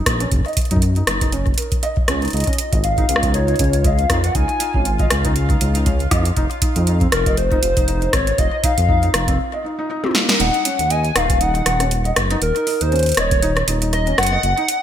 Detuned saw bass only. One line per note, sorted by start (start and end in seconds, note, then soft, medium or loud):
0.06 0.26 A#1 medium
0.32 0.42 F#1 loud
0.71 1.03 F#2 medium
1.07 1.53 F#1 medium
2.08 2.28 C#2 loud
2.33 2.44 C#2 loud
2.73 3.05 G#1 medium
3.09 3.55 C#2 medium
3.59 4.05 C#2 medium
4.10 4.29 F2 medium
4.35 4.46 C#2 loud
4.74 5.06 G#1 medium
5.11 5.57 C#2 medium
5.61 6.07 C#2 medium
6.11 6.31 F2 medium
6.37 6.47 F1 loud
6.76 7.08 F2 medium
7.12 7.58 F1 medium
7.63 8.09 F1 medium
8.13 8.33 G#1 medium
8.38 8.49 F1 loud
8.78 9.10 F2 medium
9.14 9.39 F1 medium
10.40 10.51 D#1 loud
10.79 11.11 D#2 medium
11.16 11.62 D#1 medium
11.66 12.12 D#1 medium
12.16 12.36 F#1 medium
12.42 12.52 D#1 loud
12.81 13.13 D#2 medium
13.17 13.63 D#1 medium
13.68 14.14 D#1 medium
14.18 14.38 F#1 medium
14.43 14.54 F#1 loud